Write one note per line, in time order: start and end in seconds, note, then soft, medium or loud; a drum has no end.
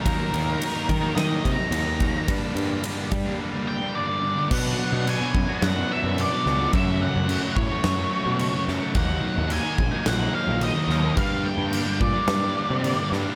0.01 0.31 D#3 medium
0.01 0.31 F#3 loud
0.01 1.18 A#4 medium
0.06 0.16 D#2 loud
0.06 0.33 A#3 loud
0.06 0.33 D#4 loud
0.06 kick loud
0.06 ride loud
0.32 0.54 D#2 medium
0.32 0.58 D#3 medium
0.32 0.59 F#3 medium
0.32 0.60 A#3 medium
0.32 0.61 D#4 medium
0.32 ride medium
0.59 0.87 D#3 loud
0.59 0.77 F#3 loud
0.59 0.76 A#3 loud
0.59 0.73 D#4 loud
0.59 ride loud
0.74 0.88 F#3 medium
0.74 0.89 A#3 medium
0.74 0.88 D#4 medium
0.88 1.10 D#3 medium
0.88 muted distorted electric guitar stroke soft
0.88 muted overdriven electric guitar stroke soft
0.88 kick medium
0.88 ride medium
1.02 1.17 A#3 medium
1.02 1.18 D#4 medium
1.06 1.16 F#3 medium
1.15 1.58 D#3 medium
1.15 1.37 D#3 medium
1.15 1.33 F#3 medium
1.15 1.31 A#3 medium
1.15 1.54 D#5 loud
1.15 snare loud
1.15 ride loud
1.19 1.30 D#4 medium
1.31 1.72 F#3 medium
1.31 1.73 A#3 medium
1.31 1.73 D#4 medium
1.45 1.56 C3 medium
1.45 kick medium
1.45 ride medium
1.52 2.33 A#5 medium
1.57 1.71 F#3 medium
1.57 1.72 A#3 medium
1.57 1.72 D#4 medium
1.71 2.13 D#2 loud
1.71 1.99 D#3 medium
1.71 1.90 F#3 loud
1.71 1.89 A#3 loud
1.71 1.86 D#4 loud
1.71 ride medium
1.88 2.00 F#3 medium
1.88 2.01 A#3 medium
1.88 2.02 D#4 medium
2.00 2.26 D#3 medium
2.00 2.16 F#3 medium
2.00 2.13 A#3 medium
2.00 2.12 D#4 medium
2.00 kick medium
2.00 ride medium
2.13 2.28 F#3 medium
2.13 2.27 A#3 medium
2.13 2.26 D#4 medium
2.27 2.82 G2 medium
2.27 2.39 G2 loud
2.27 2.53 D3 medium
2.27 2.55 G3 loud
2.27 2.56 A#3 loud
2.27 2.57 D4 loud
2.27 kick loud
2.27 ride loud
2.54 2.76 G2 medium
2.54 2.84 D3 medium
2.54 2.84 G3 medium
2.54 2.85 A#3 medium
2.54 2.85 D4 medium
2.54 ride medium
2.83 3.25 G2 loud
2.83 3.12 D3 loud
2.83 2.99 G3 loud
2.83 2.97 A#3 medium
2.83 2.96 D4 loud
2.83 ride loud
2.97 3.12 G3 medium
2.97 3.12 A#3 medium
2.97 3.12 D4 medium
3.12 3.33 G3 medium
3.12 muted distorted electric guitar stroke medium
3.12 muted overdriven electric guitar stroke medium
3.12 kick loud
3.12 ride medium
3.26 3.40 G3 medium
3.26 3.41 A#3 medium
3.26 3.41 D4 medium
3.40 3.81 D3 medium
3.40 3.55 G3 medium
3.40 3.53 A#3 medium
3.40 3.51 D4 medium
3.52 3.94 G3 medium
3.52 3.95 A#3 medium
3.52 3.96 D4 medium
3.68 3.94 G5 medium
3.81 3.95 G3 medium
3.81 3.96 A#3 medium
3.81 3.96 D4 medium
3.94 4.36 G2 medium
3.94 4.21 D3 loud
3.94 4.11 G3 loud
3.94 4.10 A#3 loud
3.94 4.08 D4 loud
3.94 4.47 D5 medium
4.09 4.23 G3 medium
4.09 4.24 A#3 medium
4.09 4.24 D4 medium
4.22 4.49 D3 medium
4.22 4.39 G3 medium
4.22 4.37 A#3 medium
4.22 4.35 D4 medium
4.36 4.51 G3 medium
4.36 4.50 A#3 medium
4.36 4.49 D4 medium
4.51 5.05 B2 medium
4.51 4.72 B2 medium
4.51 5.07 F#3 medium
4.51 5.07 B3 loud
4.51 5.08 D4 loud
4.51 5.10 F#4 loud
4.51 4.97 F#5 loud
4.51 kick loud
4.51 crash loud
4.51 crash medium
4.78 5.04 B2 medium
4.78 4.93 F#3 medium
4.78 4.91 B3 medium
4.78 4.91 D4 medium
4.92 5.13 B2 loud
4.92 5.06 F#3 medium
4.92 5.05 B3 medium
4.92 5.06 D4 medium
5.00 5.07 F#5 medium
5.07 5.48 B2 loud
5.07 5.34 F#3 loud
5.07 5.23 B3 loud
5.07 5.22 D4 loud
5.07 5.20 F#4 loud
5.07 5.63 G#5 loud
5.07 crash medium
5.19 5.34 F#3 medium
5.19 5.34 D4 medium
5.19 5.35 F#4 medium
5.23 5.33 B3 medium
5.23 5.33 D4 medium
5.34 5.45 F#2 medium
5.34 muted distorted electric guitar stroke medium
5.34 muted overdriven electric guitar stroke soft
5.34 kick medium
5.49 5.77 F#3 medium
5.49 5.78 B3 medium
5.49 5.77 D4 medium
5.49 5.76 F#4 medium
5.62 5.83 F#2 loud
5.62 5.91 F#5 loud
5.62 snare loud
5.62 crash medium
5.76 6.17 F#3 medium
5.76 5.90 B3 medium
5.76 5.91 D4 medium
5.76 5.93 F#4 medium
5.90 6.18 F#3 medium
5.90 6.18 B3 medium
5.90 6.19 D4 medium
5.90 6.21 F#4 medium
5.90 6.19 E5 medium
6.03 6.24 F#2 medium
6.17 6.59 B2 loud
6.17 6.44 F#3 loud
6.17 6.32 B3 loud
6.17 6.31 D4 loud
6.17 6.30 F#4 loud
6.17 6.73 D5 medium
6.17 crash medium
6.30 6.46 F#3 medium
6.30 6.45 B3 medium
6.30 6.46 D4 medium
6.30 6.47 F#4 medium
6.45 6.67 C#2 medium
6.45 6.71 B2 medium
6.45 6.73 F#3 medium
6.45 6.61 B3 medium
6.45 6.60 D4 medium
6.45 6.59 F#4 medium
6.45 snare soft
6.59 6.74 F#3 medium
6.59 6.73 B3 medium
6.59 6.72 D4 medium
6.59 6.75 F#4 medium
6.72 7.27 F#2 loud
6.72 7.05 F#2 loud
6.72 7.28 C#3 loud
6.72 7.29 F#3 loud
6.72 7.29 A3 loud
6.72 7.30 C#4 loud
6.72 7.31 F#4 loud
6.72 6.99 E5 loud
6.72 kick loud
6.72 crash medium
7.01 7.28 C#3 medium
7.01 7.17 F#3 medium
7.01 7.16 A3 medium
7.01 7.14 C#4 medium
7.01 7.53 F#5 loud
7.16 7.36 F#2 loud
7.16 7.30 F#3 medium
7.16 7.30 A3 medium
7.16 7.30 C#4 medium
7.28 7.70 F#2 medium
7.28 7.71 C#3 medium
7.28 7.44 F#3 loud
7.28 7.43 A3 loud
7.28 7.42 C#4 loud
7.28 7.41 F#4 loud
7.28 crash medium
7.41 7.57 F#3 medium
7.41 7.56 A3 medium
7.41 7.57 C#4 medium
7.41 7.58 F#4 medium
7.56 7.67 A2 medium
7.56 8.63 C#5 medium
7.56 muted distorted electric guitar stroke medium
7.56 muted overdriven electric guitar stroke soft
7.56 kick medium
7.70 7.98 F#3 medium
7.70 7.97 A3 medium
7.70 7.96 C#4 medium
7.70 7.95 F#4 medium
7.84 8.05 F#2 loud
7.84 snare loud
7.84 crash medium
7.96 8.08 F#3 medium
7.96 8.10 A3 medium
7.96 8.11 C#4 medium
7.96 8.12 F#4 medium
8.10 8.38 F#3 medium
8.10 8.38 A3 medium
8.10 8.39 C#4 medium
8.10 8.39 F#4 medium
8.26 8.47 B2 medium
8.37 8.80 F#2 loud
8.37 8.81 C#3 loud
8.37 8.55 F#3 loud
8.37 8.54 A3 loud
8.37 8.53 C#4 loud
8.37 8.51 F#4 loud
8.37 crash medium
8.52 8.65 F#3 medium
8.52 8.66 A3 medium
8.52 8.67 C#4 medium
8.52 8.68 F#4 medium
8.66 8.78 F#2 medium
8.66 8.93 C#3 medium
8.66 8.82 F#3 medium
8.66 8.80 A3 medium
8.66 8.80 C#4 medium
8.66 8.79 F#4 medium
8.66 snare soft
8.80 8.93 F#3 medium
8.80 8.94 A3 medium
8.80 8.93 C#4 medium
8.80 8.93 F#4 medium
8.93 9.16 D#2 medium
8.93 9.47 D#3 medium
8.93 9.48 F#3 loud
8.93 9.51 A#3 loud
8.93 9.50 D#4 loud
8.93 9.47 F#5 loud
8.93 kick loud
8.93 crash medium
9.22 9.48 D#3 medium
9.22 9.37 F#3 medium
9.22 9.37 A#3 medium
9.22 9.35 D#4 medium
9.36 9.58 D#2 loud
9.36 9.49 F#3 medium
9.36 9.51 A#3 medium
9.36 9.51 D#4 medium
9.48 9.77 D#3 loud
9.48 9.65 F#3 medium
9.48 9.65 A#3 loud
9.48 9.62 D#4 loud
9.48 crash medium
9.53 10.07 G#5 loud
9.63 9.77 F#3 medium
9.63 9.78 A#3 medium
9.63 9.79 D#4 medium
9.78 9.89 A#1 medium
9.78 muted distorted electric guitar stroke medium
9.78 muted overdriven electric guitar stroke soft
9.78 kick medium
9.91 10.22 F#3 medium
9.91 10.20 A#3 medium
9.91 10.18 D#4 medium
10.06 10.27 A#1 loud
10.06 10.33 F#5 loud
10.06 snare loud
10.06 crash medium
10.20 10.32 F#3 medium
10.20 10.34 A#3 medium
10.20 10.35 D#4 medium
10.32 10.59 D#3 medium
10.32 10.61 F#3 medium
10.32 10.62 A#3 medium
10.32 10.63 D#4 medium
10.32 10.60 F5 medium
10.48 10.69 A#1 medium
10.60 10.87 D#3 medium
10.60 10.77 F#3 medium
10.60 10.76 A#3 loud
10.60 10.74 D#4 loud
10.60 11.14 D#5 medium
10.60 crash medium
10.75 10.89 F#3 medium
10.75 10.89 A#3 medium
10.75 10.91 D#4 medium
10.88 11.09 D#2 medium
10.88 11.15 D#3 medium
10.88 11.05 F#3 medium
10.88 11.04 A#3 medium
10.88 snare soft
10.92 11.01 D#4 medium
11.03 11.17 F#3 medium
11.03 11.16 A#3 medium
11.03 11.15 D#4 medium
11.16 11.70 G2 loud
11.16 11.49 G2 loud
11.16 11.71 D3 loud
11.16 11.72 G3 loud
11.16 11.73 A#3 medium
11.16 11.74 D4 loud
11.16 11.43 F5 loud
11.16 kick loud
11.16 crash medium
11.44 11.72 D3 medium
11.44 11.60 G3 medium
11.44 11.59 A#3 medium
11.44 11.58 D4 medium
11.44 12.03 G5 medium
11.58 11.79 G2 medium
11.58 11.72 G3 medium
11.58 11.72 A#3 medium
11.58 11.74 D4 medium
11.72 12.14 G2 loud
11.72 12.00 D3 loud
11.72 11.89 G3 loud
11.72 11.88 A#3 loud
11.72 11.86 D4 loud
11.72 crash medium
11.87 12.00 G3 medium
11.87 12.00 A#3 medium
11.87 12.02 D4 medium
12.00 12.11 A#2 medium
12.00 13.08 D5 medium
12.00 muted distorted electric guitar stroke medium
12.00 muted overdriven electric guitar stroke soft
12.00 kick medium
12.13 12.44 G3 medium
12.13 12.43 A#3 medium
12.13 12.41 D4 medium
12.28 12.49 G2 loud
12.28 snare loud
12.28 crash medium
12.42 12.56 G3 medium
12.42 12.57 A#3 medium
12.42 12.57 D4 medium
12.56 12.84 D3 medium
12.56 12.85 G3 medium
12.56 12.85 A#3 medium
12.56 12.86 D4 loud
12.70 12.91 C3 medium
12.84 13.26 G2 loud
12.84 13.10 D3 medium
12.84 12.99 G3 loud
12.84 12.98 A#3 loud
12.84 12.97 D4 loud
12.84 crash medium
12.98 13.11 G3 medium
12.98 13.12 A#3 medium
12.98 13.14 D4 medium
13.11 13.22 G2 medium
13.11 13.35 D3 medium
13.11 13.27 G3 medium
13.11 13.25 A#3 medium
13.11 13.24 D4 medium
13.11 snare soft
13.25 13.35 G3 medium
13.25 13.35 A#3 medium
13.25 13.35 D4 medium